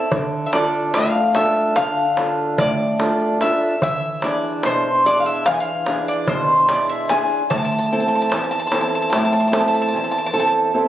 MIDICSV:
0, 0, Header, 1, 4, 480
1, 0, Start_track
1, 0, Key_signature, 0, "minor"
1, 0, Tempo, 821918
1, 64, Time_signature, 9, 3, 24, 8
1, 3664, Tempo, 811908
1, 6387, End_track
2, 0, Start_track
2, 0, Title_t, "Bouzouki"
2, 0, Program_c, 0, 25
2, 0, Note_on_c, 0, 76, 86
2, 263, Note_off_c, 0, 76, 0
2, 270, Note_on_c, 0, 76, 62
2, 306, Note_off_c, 0, 76, 0
2, 309, Note_on_c, 0, 74, 82
2, 550, Note_off_c, 0, 74, 0
2, 553, Note_on_c, 0, 77, 98
2, 773, Note_off_c, 0, 77, 0
2, 792, Note_on_c, 0, 76, 85
2, 1013, Note_off_c, 0, 76, 0
2, 1029, Note_on_c, 0, 77, 97
2, 1513, Note_off_c, 0, 77, 0
2, 1515, Note_on_c, 0, 74, 92
2, 1968, Note_off_c, 0, 74, 0
2, 1995, Note_on_c, 0, 76, 87
2, 2215, Note_off_c, 0, 76, 0
2, 2238, Note_on_c, 0, 76, 101
2, 2473, Note_off_c, 0, 76, 0
2, 2476, Note_on_c, 0, 74, 84
2, 2695, Note_off_c, 0, 74, 0
2, 2718, Note_on_c, 0, 72, 94
2, 2935, Note_off_c, 0, 72, 0
2, 2956, Note_on_c, 0, 74, 91
2, 3035, Note_off_c, 0, 74, 0
2, 3037, Note_on_c, 0, 77, 67
2, 3066, Note_off_c, 0, 77, 0
2, 3072, Note_on_c, 0, 76, 84
2, 3180, Note_off_c, 0, 76, 0
2, 3189, Note_on_c, 0, 77, 103
2, 3224, Note_off_c, 0, 77, 0
2, 3232, Note_on_c, 0, 80, 89
2, 3268, Note_off_c, 0, 80, 0
2, 3272, Note_on_c, 0, 77, 98
2, 3528, Note_off_c, 0, 77, 0
2, 3552, Note_on_c, 0, 74, 90
2, 3659, Note_off_c, 0, 74, 0
2, 3673, Note_on_c, 0, 72, 88
2, 3908, Note_off_c, 0, 72, 0
2, 3910, Note_on_c, 0, 74, 86
2, 4020, Note_off_c, 0, 74, 0
2, 4031, Note_on_c, 0, 76, 83
2, 4152, Note_off_c, 0, 76, 0
2, 4153, Note_on_c, 0, 80, 93
2, 4373, Note_off_c, 0, 80, 0
2, 4389, Note_on_c, 0, 81, 96
2, 4426, Note_off_c, 0, 81, 0
2, 4433, Note_on_c, 0, 81, 69
2, 4469, Note_off_c, 0, 81, 0
2, 4476, Note_on_c, 0, 81, 78
2, 4510, Note_off_c, 0, 81, 0
2, 4517, Note_on_c, 0, 81, 66
2, 4551, Note_off_c, 0, 81, 0
2, 4558, Note_on_c, 0, 81, 73
2, 4596, Note_off_c, 0, 81, 0
2, 4603, Note_on_c, 0, 81, 64
2, 4634, Note_off_c, 0, 81, 0
2, 4641, Note_on_c, 0, 81, 75
2, 4678, Note_off_c, 0, 81, 0
2, 4685, Note_on_c, 0, 81, 63
2, 4725, Note_off_c, 0, 81, 0
2, 4731, Note_on_c, 0, 81, 69
2, 4767, Note_off_c, 0, 81, 0
2, 4775, Note_on_c, 0, 81, 64
2, 4805, Note_off_c, 0, 81, 0
2, 4812, Note_on_c, 0, 81, 70
2, 4851, Note_off_c, 0, 81, 0
2, 4858, Note_on_c, 0, 81, 61
2, 4894, Note_off_c, 0, 81, 0
2, 4901, Note_on_c, 0, 81, 76
2, 4934, Note_off_c, 0, 81, 0
2, 4941, Note_on_c, 0, 81, 63
2, 4979, Note_off_c, 0, 81, 0
2, 4986, Note_on_c, 0, 81, 67
2, 5025, Note_off_c, 0, 81, 0
2, 5035, Note_on_c, 0, 81, 63
2, 5071, Note_off_c, 0, 81, 0
2, 5079, Note_on_c, 0, 81, 70
2, 5114, Note_off_c, 0, 81, 0
2, 5123, Note_on_c, 0, 81, 62
2, 5156, Note_off_c, 0, 81, 0
2, 5163, Note_on_c, 0, 81, 65
2, 5199, Note_off_c, 0, 81, 0
2, 5207, Note_on_c, 0, 81, 60
2, 5238, Note_off_c, 0, 81, 0
2, 5245, Note_on_c, 0, 81, 64
2, 5282, Note_off_c, 0, 81, 0
2, 5289, Note_on_c, 0, 81, 60
2, 5325, Note_off_c, 0, 81, 0
2, 5334, Note_on_c, 0, 81, 63
2, 5369, Note_off_c, 0, 81, 0
2, 5381, Note_on_c, 0, 81, 55
2, 5414, Note_off_c, 0, 81, 0
2, 5423, Note_on_c, 0, 81, 64
2, 5456, Note_off_c, 0, 81, 0
2, 5469, Note_on_c, 0, 81, 61
2, 5501, Note_off_c, 0, 81, 0
2, 5511, Note_on_c, 0, 81, 65
2, 5543, Note_off_c, 0, 81, 0
2, 5556, Note_on_c, 0, 81, 56
2, 5585, Note_off_c, 0, 81, 0
2, 5592, Note_on_c, 0, 81, 68
2, 5626, Note_off_c, 0, 81, 0
2, 5632, Note_on_c, 0, 81, 60
2, 5667, Note_off_c, 0, 81, 0
2, 5675, Note_on_c, 0, 81, 69
2, 5708, Note_off_c, 0, 81, 0
2, 5716, Note_on_c, 0, 81, 65
2, 5751, Note_off_c, 0, 81, 0
2, 5757, Note_on_c, 0, 81, 73
2, 5791, Note_off_c, 0, 81, 0
2, 5798, Note_on_c, 0, 81, 63
2, 5835, Note_off_c, 0, 81, 0
2, 5845, Note_on_c, 0, 81, 73
2, 5880, Note_off_c, 0, 81, 0
2, 5890, Note_on_c, 0, 81, 62
2, 5924, Note_off_c, 0, 81, 0
2, 5934, Note_on_c, 0, 81, 77
2, 5967, Note_off_c, 0, 81, 0
2, 5974, Note_on_c, 0, 81, 62
2, 6008, Note_off_c, 0, 81, 0
2, 6023, Note_on_c, 0, 81, 78
2, 6054, Note_off_c, 0, 81, 0
2, 6065, Note_on_c, 0, 81, 67
2, 6093, Note_off_c, 0, 81, 0
2, 6100, Note_on_c, 0, 81, 83
2, 6135, Note_off_c, 0, 81, 0
2, 6145, Note_on_c, 0, 81, 66
2, 6179, Note_off_c, 0, 81, 0
2, 6387, End_track
3, 0, Start_track
3, 0, Title_t, "Steel-string acoustic guitar"
3, 0, Program_c, 1, 25
3, 77, Note_on_c, 1, 50, 67
3, 312, Note_on_c, 1, 62, 50
3, 315, Note_on_c, 1, 65, 44
3, 318, Note_on_c, 1, 69, 58
3, 538, Note_off_c, 1, 50, 0
3, 560, Note_on_c, 1, 45, 71
3, 694, Note_off_c, 1, 62, 0
3, 696, Note_off_c, 1, 65, 0
3, 697, Note_off_c, 1, 69, 0
3, 791, Note_on_c, 1, 62, 52
3, 795, Note_on_c, 1, 65, 50
3, 796, Note_on_c, 1, 69, 55
3, 1020, Note_off_c, 1, 45, 0
3, 1038, Note_on_c, 1, 50, 74
3, 1174, Note_off_c, 1, 62, 0
3, 1175, Note_off_c, 1, 65, 0
3, 1177, Note_off_c, 1, 69, 0
3, 1271, Note_on_c, 1, 62, 53
3, 1274, Note_on_c, 1, 65, 49
3, 1277, Note_on_c, 1, 69, 58
3, 1499, Note_off_c, 1, 50, 0
3, 1511, Note_on_c, 1, 45, 71
3, 1654, Note_off_c, 1, 62, 0
3, 1655, Note_off_c, 1, 65, 0
3, 1658, Note_off_c, 1, 69, 0
3, 1748, Note_on_c, 1, 62, 47
3, 1751, Note_on_c, 1, 65, 50
3, 1752, Note_on_c, 1, 69, 56
3, 1975, Note_off_c, 1, 45, 0
3, 1983, Note_off_c, 1, 62, 0
3, 1986, Note_off_c, 1, 65, 0
3, 1986, Note_off_c, 1, 69, 0
3, 1990, Note_on_c, 1, 62, 52
3, 1992, Note_on_c, 1, 65, 50
3, 1995, Note_on_c, 1, 69, 58
3, 2181, Note_off_c, 1, 62, 0
3, 2183, Note_off_c, 1, 65, 0
3, 2183, Note_off_c, 1, 69, 0
3, 2235, Note_on_c, 1, 52, 64
3, 2471, Note_on_c, 1, 62, 52
3, 2474, Note_on_c, 1, 64, 45
3, 2476, Note_on_c, 1, 68, 57
3, 2696, Note_off_c, 1, 52, 0
3, 2711, Note_on_c, 1, 47, 66
3, 2852, Note_off_c, 1, 62, 0
3, 2854, Note_off_c, 1, 64, 0
3, 2856, Note_off_c, 1, 68, 0
3, 2950, Note_on_c, 1, 62, 51
3, 2956, Note_on_c, 1, 64, 45
3, 2956, Note_on_c, 1, 68, 57
3, 3173, Note_off_c, 1, 47, 0
3, 3194, Note_on_c, 1, 52, 74
3, 3331, Note_off_c, 1, 62, 0
3, 3334, Note_off_c, 1, 64, 0
3, 3335, Note_off_c, 1, 68, 0
3, 3430, Note_on_c, 1, 64, 50
3, 3431, Note_on_c, 1, 62, 55
3, 3434, Note_on_c, 1, 68, 60
3, 3653, Note_off_c, 1, 52, 0
3, 3673, Note_on_c, 1, 47, 69
3, 3811, Note_off_c, 1, 64, 0
3, 3812, Note_off_c, 1, 62, 0
3, 3814, Note_off_c, 1, 68, 0
3, 3909, Note_on_c, 1, 62, 50
3, 3913, Note_on_c, 1, 64, 42
3, 3914, Note_on_c, 1, 68, 58
3, 4136, Note_off_c, 1, 47, 0
3, 4144, Note_off_c, 1, 62, 0
3, 4149, Note_off_c, 1, 64, 0
3, 4151, Note_on_c, 1, 62, 46
3, 4152, Note_off_c, 1, 68, 0
3, 4156, Note_on_c, 1, 64, 46
3, 4159, Note_on_c, 1, 68, 59
3, 4341, Note_off_c, 1, 62, 0
3, 4344, Note_off_c, 1, 64, 0
3, 4346, Note_off_c, 1, 68, 0
3, 4400, Note_on_c, 1, 45, 69
3, 4637, Note_on_c, 1, 60, 49
3, 4642, Note_on_c, 1, 64, 47
3, 4642, Note_on_c, 1, 69, 53
3, 4860, Note_off_c, 1, 45, 0
3, 4878, Note_on_c, 1, 40, 64
3, 5018, Note_off_c, 1, 60, 0
3, 5019, Note_off_c, 1, 64, 0
3, 5020, Note_off_c, 1, 69, 0
3, 5112, Note_on_c, 1, 60, 51
3, 5114, Note_on_c, 1, 64, 45
3, 5119, Note_on_c, 1, 69, 52
3, 5339, Note_off_c, 1, 40, 0
3, 5352, Note_on_c, 1, 45, 72
3, 5494, Note_off_c, 1, 60, 0
3, 5496, Note_off_c, 1, 64, 0
3, 5497, Note_off_c, 1, 69, 0
3, 5583, Note_on_c, 1, 60, 47
3, 5586, Note_on_c, 1, 64, 47
3, 5588, Note_on_c, 1, 69, 52
3, 5815, Note_off_c, 1, 45, 0
3, 5830, Note_on_c, 1, 40, 64
3, 5969, Note_off_c, 1, 60, 0
3, 5969, Note_off_c, 1, 64, 0
3, 5969, Note_off_c, 1, 69, 0
3, 6062, Note_on_c, 1, 60, 50
3, 6066, Note_on_c, 1, 64, 43
3, 6066, Note_on_c, 1, 69, 54
3, 6292, Note_off_c, 1, 40, 0
3, 6298, Note_off_c, 1, 60, 0
3, 6301, Note_off_c, 1, 64, 0
3, 6302, Note_off_c, 1, 69, 0
3, 6305, Note_on_c, 1, 60, 50
3, 6308, Note_on_c, 1, 64, 43
3, 6310, Note_on_c, 1, 69, 49
3, 6387, Note_off_c, 1, 60, 0
3, 6387, Note_off_c, 1, 64, 0
3, 6387, Note_off_c, 1, 69, 0
3, 6387, End_track
4, 0, Start_track
4, 0, Title_t, "Darbuka"
4, 68, Note_on_c, 9, 64, 90
4, 126, Note_off_c, 9, 64, 0
4, 309, Note_on_c, 9, 63, 75
4, 367, Note_off_c, 9, 63, 0
4, 549, Note_on_c, 9, 63, 68
4, 607, Note_off_c, 9, 63, 0
4, 787, Note_on_c, 9, 63, 72
4, 845, Note_off_c, 9, 63, 0
4, 912, Note_on_c, 9, 63, 29
4, 971, Note_off_c, 9, 63, 0
4, 1027, Note_on_c, 9, 63, 72
4, 1085, Note_off_c, 9, 63, 0
4, 1268, Note_on_c, 9, 63, 68
4, 1326, Note_off_c, 9, 63, 0
4, 1508, Note_on_c, 9, 64, 100
4, 1567, Note_off_c, 9, 64, 0
4, 1750, Note_on_c, 9, 63, 75
4, 1808, Note_off_c, 9, 63, 0
4, 1990, Note_on_c, 9, 63, 64
4, 2049, Note_off_c, 9, 63, 0
4, 2112, Note_on_c, 9, 63, 30
4, 2170, Note_off_c, 9, 63, 0
4, 2230, Note_on_c, 9, 64, 89
4, 2289, Note_off_c, 9, 64, 0
4, 2466, Note_on_c, 9, 63, 72
4, 2524, Note_off_c, 9, 63, 0
4, 2706, Note_on_c, 9, 63, 71
4, 2764, Note_off_c, 9, 63, 0
4, 3068, Note_on_c, 9, 63, 28
4, 3127, Note_off_c, 9, 63, 0
4, 3187, Note_on_c, 9, 63, 70
4, 3246, Note_off_c, 9, 63, 0
4, 3425, Note_on_c, 9, 63, 71
4, 3483, Note_off_c, 9, 63, 0
4, 3544, Note_on_c, 9, 63, 26
4, 3602, Note_off_c, 9, 63, 0
4, 3664, Note_on_c, 9, 64, 94
4, 3723, Note_off_c, 9, 64, 0
4, 3908, Note_on_c, 9, 63, 77
4, 3967, Note_off_c, 9, 63, 0
4, 4149, Note_on_c, 9, 63, 71
4, 4208, Note_off_c, 9, 63, 0
4, 4270, Note_on_c, 9, 63, 28
4, 4329, Note_off_c, 9, 63, 0
4, 4393, Note_on_c, 9, 64, 85
4, 4452, Note_off_c, 9, 64, 0
4, 4515, Note_on_c, 9, 63, 30
4, 4574, Note_off_c, 9, 63, 0
4, 4873, Note_on_c, 9, 63, 70
4, 4932, Note_off_c, 9, 63, 0
4, 5108, Note_on_c, 9, 63, 68
4, 5168, Note_off_c, 9, 63, 0
4, 5351, Note_on_c, 9, 63, 71
4, 5410, Note_off_c, 9, 63, 0
4, 5590, Note_on_c, 9, 63, 70
4, 5650, Note_off_c, 9, 63, 0
4, 5711, Note_on_c, 9, 63, 27
4, 5770, Note_off_c, 9, 63, 0
4, 6387, End_track
0, 0, End_of_file